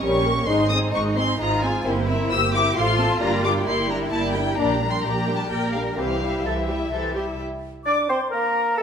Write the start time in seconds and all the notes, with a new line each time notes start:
0.02 A#1 G3 C#4 G4 A#4 C#5 C#6
0.25 A#3 G4 A#4
0.47 G#1 G#3 D#4 C5 D#5 C6
0.69 C4 G#4 C5 D#6
0.92 G#1 G#3 D#4 C5 D#5 C#6
1.16 C4 G#4 C5 C6
1.39 G#1 G#3 D#4 F4 C5 D#5 A#5
1.62 C4 G#4 C5 G#5
1.85 G1 A#3 C4 E4 G4 C5
2.08 C4 E4 A#4 E5
2.30 G1 A#3 G4 C5 E6
2.53 C4 E4 A#4 E5 D6
2.76 A1 A3 F4 C5 F5 C6
2.99 C4 A4 A5
3.20 G1 G3 A#3 D4 G4 D5 A#5
3.44 G3 D4 A#4 G5 D6
3.66 G1 A#3 E4 G4 D5 C6
3.89 G3 D4 A#4 G5 A#5
4.11 G1 A#3 G4 D5 A5
4.34 G3 D4 A#4 G5
4.56 A#1 G3 A#3 D4 G4 D5 A#5
4.81 G3 D4 A#4 G5
4.93 C6
5.03 A#1 A#3 G4 D5 A#5
5.07 G4
5.28 G3 D4 A#4 G5
5.39 A5
5.50 A#1 A#3 G4 A#4 D5 G5
5.74 G3 D4 A#4 F5 G5
5.97 C2 E3 G3 C4 E4 G4 C5 F5
6.22 G3 E4 G4 E5
6.44 C2 E3 E4 G4 A4 C5 E5
6.69 G3 E4 G4 E5
6.92 C2 E3 E4 G4 A4 C5
7.16 G3 E4 G4 E5
7.85 D4 D5 D6
8.09 C4 C5 C6
8.30 A#3 A#4 A#5
8.76 A4 A5